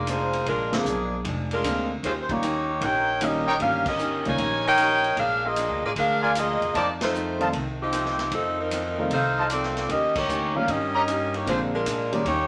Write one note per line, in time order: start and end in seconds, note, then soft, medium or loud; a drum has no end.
0.00 0.42 F1 medium
0.07 0.34 A#2 medium
0.07 0.35 F3 medium
0.07 0.35 G#3 medium
0.07 0.47 A#3 medium
0.07 0.35 D4 medium
0.07 0.47 F4 medium
0.07 0.47 G#4 medium
0.07 0.47 C5 medium
0.07 hi-hat pedal medium
0.07 ride medium
0.33 ride soft
0.46 0.82 A#1 medium
0.46 0.73 A#2 soft
0.46 0.74 F3 soft
0.46 0.72 G#3 medium
0.46 0.75 G#3 soft
0.46 0.72 D4 medium
0.46 0.75 D4 medium
0.46 0.71 F4 medium
0.46 0.72 A#4 medium
0.46 kick soft
0.46 ride soft
0.72 0.84 D3 medium
0.72 1.21 F3 medium
0.72 0.84 G#3 soft
0.72 0.84 A#3 soft
0.72 1.21 A#3 medium
0.72 0.84 C4 soft
0.72 1.21 D4 medium
0.72 0.84 F4 medium
0.72 1.21 G#4 medium
0.72 snare medium
0.72 ride medium
0.85 1.22 B1 medium
0.85 1.13 A#2 medium
0.85 1.14 F3 medium
0.85 1.14 G#3 medium
0.85 1.14 D4 medium
0.85 hi-hat pedal medium
1.24 1.61 F1 medium
1.24 1.52 A#2 soft
1.24 1.53 F3 medium
1.24 1.53 G#3 medium
1.24 1.54 D4 medium
1.24 kick soft
1.24 ride medium
1.51 1.89 G#3 medium
1.51 1.88 D4 medium
1.51 1.89 F4 medium
1.51 1.88 A#4 medium
1.51 ride soft
1.63 2.00 D2 medium
1.63 1.91 A#2 medium
1.63 1.88 D3 soft
1.63 1.91 F3 medium
1.63 1.92 G#3 medium
1.63 1.88 G#3 soft
1.63 1.88 A#3 soft
1.63 1.88 C4 soft
1.63 1.92 D4 medium
1.63 1.88 F4 medium
1.63 hi-hat pedal medium
1.63 ride medium
2.03 2.78 D#2 medium
2.03 2.30 D#3 soft
2.03 2.12 G#3 medium
2.03 2.31 A#3 soft
2.03 2.12 C#4 medium
2.03 2.32 C#4 soft
2.03 2.12 F4 medium
2.03 2.32 G4 soft
2.03 2.12 C5 medium
2.03 kick soft
2.03 ride medium
2.22 2.30 C5 medium
2.29 2.41 D#3 medium
2.29 2.41 G3 medium
2.29 2.41 A#3 medium
2.29 2.83 A#3 medium
2.29 2.41 C#4 soft
2.29 2.83 D#4 medium
2.29 2.41 F4 medium
2.29 2.83 G4 medium
2.29 2.82 C#5 medium
2.29 kick medium
2.29 ride soft
2.42 2.70 D#3 medium
2.42 2.70 A#3 medium
2.42 2.71 C#4 medium
2.42 2.71 G4 medium
2.42 hi-hat pedal medium
2.42 ride medium
2.81 3.56 A#1 medium
2.81 3.09 D#3 soft
2.81 3.09 A#3 soft
2.81 3.10 C#4 soft
2.81 3.22 D#4 medium
2.81 3.10 G4 soft
2.81 3.21 A#4 medium
2.81 3.22 C#5 medium
2.81 3.22 G5 loud
2.81 kick soft
2.81 ride medium
3.21 3.48 D#3 medium
3.21 3.44 D#3 medium
3.21 3.45 G3 soft
3.21 3.49 A#3 medium
3.21 3.45 A#3 soft
3.21 3.45 C#4 medium
3.21 3.49 C#4 medium
3.21 3.60 C#4 medium
3.21 3.45 D#4 medium
3.21 3.61 G4 medium
3.21 3.50 G4 medium
3.21 3.60 A#4 medium
3.21 3.61 D#5 medium
3.21 hi-hat pedal medium
3.21 ride medium
3.47 3.56 D#4 loud
3.47 3.56 A#4 medium
3.47 3.56 C#5 medium
3.47 3.56 G5 loud
3.59 4.21 G1 medium
3.59 3.84 D#3 medium
3.59 3.88 D#3 soft
3.59 3.83 G3 soft
3.59 3.84 A#3 soft
3.59 3.88 A#3 soft
3.59 3.84 C#4 soft
3.59 3.85 C#4 medium
3.59 3.89 C#4 soft
3.59 3.84 F4 medium
3.59 3.85 G4 medium
3.59 3.85 A#4 medium
3.59 3.85 F5 loud
3.59 kick soft
3.59 ride medium
3.63 3.89 G4 soft
3.86 4.24 C#4 medium
3.86 4.24 G4 medium
3.86 4.24 A#4 medium
3.86 4.24 D#5 medium
3.86 kick medium
3.86 crash medium
3.99 4.27 D#3 medium
3.99 4.27 A#3 medium
3.99 4.28 C#4 medium
3.99 4.28 G4 medium
3.99 hi-hat pedal medium
4.25 4.38 C#2 medium
4.25 4.37 D#3 medium
4.25 4.37 G3 medium
4.25 4.37 A#3 medium
4.25 4.37 C#4 medium
4.25 4.66 D#4 medium
4.25 4.37 F4 medium
4.25 4.66 A#4 medium
4.25 4.66 C#5 medium
4.25 4.66 G#5 loud
4.25 ride soft
4.38 5.13 A#1 medium
4.38 4.66 D#3 soft
4.38 4.67 A#3 medium
4.38 4.67 C#4 soft
4.38 4.68 G4 medium
4.38 kick soft
4.38 ride medium
4.67 5.15 D#4 loud
4.67 5.15 A#4 loud
4.67 5.15 C#5 loud
4.67 5.15 G5 loud
4.77 5.06 D#3 medium
4.77 5.06 A#3 medium
4.77 5.07 C#4 medium
4.77 5.17 D#4 medium
4.77 5.07 G4 medium
4.77 5.17 A#4 medium
4.77 5.17 C#5 medium
4.77 5.17 G5 medium
4.77 hi-hat pedal medium
4.77 ride medium
5.04 ride soft
5.17 5.66 A#1 medium
5.17 5.44 A#2 soft
5.17 5.45 F3 soft
5.17 5.46 G#3 medium
5.17 5.44 D4 medium
5.17 5.46 D4 medium
5.17 5.44 G#4 medium
5.17 5.44 A#4 medium
5.17 5.44 F5 loud
5.17 kick soft
5.17 ride medium
5.46 5.84 A#3 medium
5.46 5.84 F4 medium
5.46 5.84 G#4 medium
5.46 5.84 D#5 medium
5.56 5.84 A#2 medium
5.56 5.84 F3 medium
5.56 5.85 G#3 medium
5.56 5.85 D4 medium
5.56 hi-hat pedal medium
5.56 ride medium
5.69 5.82 D2 medium
5.82 5.95 A1 medium
5.82 5.91 A#3 medium
5.82 5.91 F4 medium
5.82 5.90 G#4 medium
5.82 5.91 D5 medium
5.96 6.57 D2 medium
5.96 6.24 A#2 soft
5.96 6.24 F3 medium
5.96 6.25 G#3 medium
5.96 6.34 D4 loud
5.96 6.25 D4 medium
5.96 6.34 G#4 medium
5.96 6.33 A#4 medium
5.96 6.34 F5 loud
5.96 kick soft
5.96 ride medium
6.22 6.31 F4 medium
6.22 6.31 A#4 medium
6.22 6.31 D5 medium
6.22 6.31 G#5 medium
6.35 6.63 A#2 medium
6.35 6.63 F3 medium
6.35 6.64 G#3 medium
6.35 6.73 A#3 medium
6.35 6.64 D4 medium
6.35 6.73 F4 medium
6.35 6.74 G#4 medium
6.35 6.73 D#5 loud
6.35 hi-hat pedal medium
6.35 ride medium
6.61 6.73 E2 medium
6.61 ride soft
6.74 7.02 F2 soft
6.74 7.49 F2 medium
6.74 7.02 D#3 soft
6.74 7.03 A3 medium
6.74 6.88 A#3 medium
6.74 7.03 C4 soft
6.74 6.88 D#4 medium
6.74 6.92 F4 medium
6.74 6.88 G4 medium
6.74 6.92 C5 medium
6.74 6.88 D5 medium
6.74 6.92 D#5 medium
6.74 6.92 A5 medium
6.74 kick soft
6.74 ride medium
7.01 7.46 A3 medium
7.01 7.46 D#4 medium
7.01 7.46 F4 medium
7.01 7.46 C5 medium
7.01 snare medium
7.01 ride medium
7.13 7.41 F2 medium
7.13 7.42 D#3 medium
7.13 7.42 A3 medium
7.13 7.42 C4 medium
7.13 hi-hat pedal medium
7.39 7.51 D#3 medium
7.39 7.51 G3 medium
7.39 7.51 A3 medium
7.39 7.51 C4 soft
7.39 7.52 F4 medium
7.39 7.49 F4 medium
7.39 7.49 C5 medium
7.39 7.49 D#5 medium
7.39 7.49 A5 medium
7.39 ride soft
7.52 8.28 C2 medium
7.52 7.80 F2 medium
7.52 7.81 D#3 medium
7.52 7.81 A3 medium
7.52 7.82 C4 medium
7.52 kick soft
7.52 ride medium
7.82 8.29 F3 medium
7.82 8.29 C4 medium
7.82 8.29 D#4 medium
7.82 8.29 G4 medium
7.92 8.20 F2 medium
7.92 8.20 D#3 medium
7.92 8.21 A3 medium
7.92 8.21 C4 medium
7.92 hi-hat pedal medium
7.92 ride medium
8.06 snare soft
8.19 snare soft
8.19 ride soft
8.31 8.59 F2 soft
8.31 9.06 F2 medium
8.31 8.60 D#3 soft
8.31 8.57 F3 medium
8.31 8.60 A3 medium
8.31 8.57 C4 medium
8.31 8.61 C4 soft
8.31 8.57 D#4 medium
8.31 8.57 A4 medium
8.31 kick soft
8.31 ride medium
8.60 9.12 F3 medium
8.60 9.12 C4 medium
8.60 9.12 D#4 medium
8.60 9.11 A#4 medium
8.71 8.99 F2 medium
8.71 8.99 D#3 medium
8.71 9.00 A3 medium
8.71 9.00 C4 medium
8.71 hi-hat pedal medium
8.71 ride medium
8.98 9.09 D#3 medium
8.98 9.10 G3 medium
8.98 9.10 A3 medium
8.98 9.10 C4 medium
8.98 9.10 F4 medium
9.10 9.85 C2 medium
9.10 9.38 F2 soft
9.10 9.39 D#3 soft
9.10 9.39 A3 medium
9.10 9.40 C4 soft
9.10 9.48 D#4 medium
9.10 9.48 A4 medium
9.10 9.48 C5 medium
9.10 9.48 F5 medium
9.10 kick soft
9.10 ride medium
9.37 9.46 F4 medium
9.37 9.46 C5 medium
9.37 9.46 D#5 medium
9.37 9.46 A5 medium
9.49 9.77 F2 medium
9.49 9.78 D#3 medium
9.49 9.78 A3 medium
9.49 9.87 C4 medium
9.49 9.78 C4 medium
9.49 9.87 F4 medium
9.49 9.87 A4 medium
9.49 9.87 D5 medium
9.49 hi-hat pedal medium
9.49 ride medium
9.63 snare soft
9.76 snare soft
9.76 ride soft
9.88 10.26 D#2 medium
9.88 10.16 D#3 soft
9.88 10.17 A#3 soft
9.88 10.17 C#4 soft
9.88 10.16 C#4 medium
9.88 10.16 G4 medium
9.88 10.18 G4 medium
9.88 10.16 A#4 medium
9.88 10.16 D#5 medium
9.88 kick soft
9.88 ride medium
10.16 10.55 A#3 medium
10.16 10.55 D#4 medium
10.16 10.55 G4 medium
10.16 10.55 C#5 medium
10.16 kick medium
10.16 crash medium
10.28 10.64 D2 medium
10.28 10.56 D#3 medium
10.28 10.56 A#3 medium
10.28 10.57 C#4 medium
10.28 10.57 G4 medium
10.28 hi-hat pedal medium
10.55 10.67 D#3 medium
10.55 10.67 G3 medium
10.55 10.67 A#3 medium
10.55 10.67 C#4 medium
10.55 10.68 C#4 medium
10.55 10.67 F4 medium
10.55 10.68 G4 medium
10.55 10.68 A#4 medium
10.55 10.69 F5 medium
10.67 11.43 G2 medium
10.67 10.95 D#3 soft
10.67 10.96 A#3 soft
10.67 11.34 C#4 medium
10.67 10.97 C#4 soft
10.67 11.34 G4 medium
10.67 10.97 G4 medium
10.67 11.34 A#4 medium
10.67 11.34 D#5 medium
10.67 kick soft
10.67 ride medium
10.94 11.03 G4 medium
10.94 11.03 C#5 medium
10.94 11.03 D#5 medium
10.94 11.03 A#5 medium
11.07 11.34 D#3 medium
11.07 11.35 A#3 medium
11.07 11.35 C#4 medium
11.07 11.36 G4 medium
11.07 hi-hat pedal medium
11.07 ride medium
11.34 11.48 A#3 medium
11.34 11.48 D#4 medium
11.34 11.48 G4 medium
11.34 11.47 C#5 medium
11.34 ride soft
11.46 11.83 A#1 medium
11.46 11.74 A#2 soft
11.46 11.70 D3 medium
11.46 11.75 F3 soft
11.46 11.71 G#3 soft
11.46 11.75 G#3 soft
11.46 11.60 G#3 medium
11.46 11.71 A#3 medium
11.46 11.71 C4 medium
11.46 11.60 D4 medium
11.46 11.75 D4 soft
11.46 11.71 F4 medium
11.46 11.60 F4 medium
11.46 11.60 C5 medium
11.46 kick soft
11.46 ride medium
11.74 12.11 G#3 medium
11.74 12.10 D4 medium
11.74 12.11 F4 medium
11.74 12.10 A#4 medium
11.85 12.13 A#2 medium
11.85 12.22 A#2 medium
11.85 12.14 F3 medium
11.85 12.14 G#3 medium
11.85 12.14 D4 medium
11.85 hi-hat pedal medium
11.85 ride medium
12.12 12.24 D#3 medium
12.12 12.24 G3 medium
12.12 12.24 A#3 medium
12.12 12.25 A#3 medium
12.12 12.24 C#4 medium
12.12 12.26 F4 medium
12.12 12.24 G4 medium
12.12 12.26 G#4 medium
12.12 12.26 D5 medium
12.12 ride soft
12.24 12.47 D#2 medium
12.24 12.47 D#3 soft
12.24 12.47 A#3 soft
12.24 12.47 A#3 medium
12.24 12.47 C#4 soft
12.24 12.47 D#4 medium
12.24 12.47 G4 medium
12.24 12.47 G4 soft
12.24 12.47 C#5 medium
12.24 kick soft
12.24 ride medium